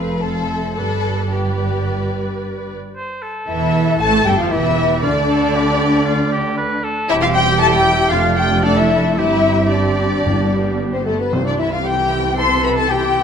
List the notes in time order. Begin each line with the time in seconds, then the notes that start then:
Already playing: F1 F2 C4 A4 B4 F5
0.20 C4 A4 F5
0.48 E5
0.75 G1 G2 G3 A4 B4 D5
1.31 G3 G4 B4 D5
2.96 C5
3.22 A4
3.48 E1 E2 E3 E4 E5
4.00 A1 A2 A3 A4 A5
4.26 G1 G2 G3 G4 G5
4.37 F2 F3 F4 F5
4.51 E1 E2 E3 E4 G4 E5
5.02 D2 D3 D4 F4 D5
5.29 A4
5.55 G4
6.06 F4
6.32 G4
6.57 B4
6.84 A4
7.09 E1 E2 G3 C4 E4 G4 E5
7.22 F4 F5
7.35 G4 G5
7.60 E4 A4 A5
7.72 G4 G5
8.11 F1 F2 A3 D4 F4 F5
8.37 G4 G5
8.63 A3 D4 A4 D5
8.76 E4 E5
9.17 G1 G2 G3 C4 E4 G4 E5
9.72 D4 D5
10.25 G1 G2 G3 B3
10.92 C4 C5
11.05 A3 A4
11.20 B3 B4
11.32 C2 C3 E3 C4 C5
11.45 D4 D5
11.59 E4 E5
11.72 F4 F5
11.84 G4 G5
12.38 A4 C5 C6
12.64 B4 B5
12.77 A4 A5
12.90 G4 G5